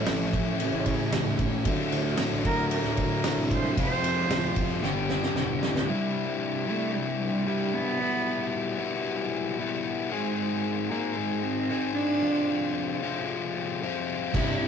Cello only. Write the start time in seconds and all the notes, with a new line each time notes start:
0.08 F3
0.59 C#3
2.45 A#4
2.72 A#4
3.53 C5
3.80 C5
5.89 G3
6.43 G3
6.69 A3
6.95 G3
7.21 G3
7.73 B3
10.10 G#3
10.89 A#3
11.16 G#3
11.43 C4
11.94 D4
14.35 G3